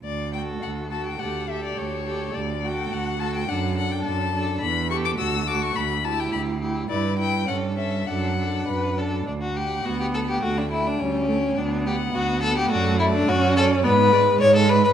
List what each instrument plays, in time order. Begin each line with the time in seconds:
0.03 cello D2, violin D5
0.33 viola F#4, violin A4 G5
0.62 cello D2, violin F#5
0.91 viola F#4, violin A4 A5
1.06 violin G5
1.19 cello D2, viola G4, violin A4 F#5
1.49 viola G4, violin A4 E5
1.64 violin D5
1.77 cello D2, violin C#5
2.06 viola G4, violin A4
2.35 cello D2, violin D5
2.63 viola F#4, violin A4 G5
2.92 cello D2, violin F#5
3.20 viola F#4, violin A4 A5
3.35 violin G5
3.48 cello F#2, viola D4, violin A4 F#5
3.77 viola D4, violin A4 F#5
3.91 violin G5
4.05 cello F#2, violin A5
4.34 viola D4, violin A4
4.61 cello E2, violin B5
4.90 viola G4, violin A4 C#6
5.05 violin D6
5.19 cello D2, viola F#4, violin A4 E6
5.47 viola F#4, violin A4 D6
5.62 violin C#6
5.76 cello D2, violin B5
6.04 viola E4, violin G4 A5
6.20 violin G5
6.32 cello D2, violin B5
6.61 viola E4, violin G4
6.89 cello G2, viola E4, violin B4 D5
7.19 viola E4, violin B4 G5
7.47 cello G2, viola C#4, violin A4 F#5
7.78 viola C#4, violin A4 E5
8.07 cello F#2, viola D4, violin A4 F#5
8.38 viola D4, violin A4
8.68 cello F#2, violin B4
8.97 viola D4, violin A4
9.27 cello D2, violin D4
9.42 violin F#4
9.56 violin G4 F#5
9.84 cello D2, viola B3, violin F#4
10.00 violin G4
10.14 violin A4 F#5
10.29 violin G4
10.42 cello D2, viola A3, violin F#4 G5
10.58 violin D4
10.71 violin E4 G5
10.87 violin D4
10.99 cello D2, viola G3, violin C#4
11.28 viola A3, violin G5
11.57 cello D2, viola B3, violin D4
11.86 violin G4 F#5
12.14 cello D2, violin F#4
12.42 violin A4 F#5
12.58 violin G4
12.70 cello F#2, viola A3, violin F#4 D5
12.99 violin E4 D5
13.15 violin D4
13.28 cello F#2, viola C#4, violin F#4
13.56 violin A4 D5
13.84 cello G#2, viola B3, violin B4 D5
14.12 viola G#3, violin D5
14.40 cello G#2, violin C#5 D5
14.56 violin A4
14.69 violin B4 D5
14.84 violin B4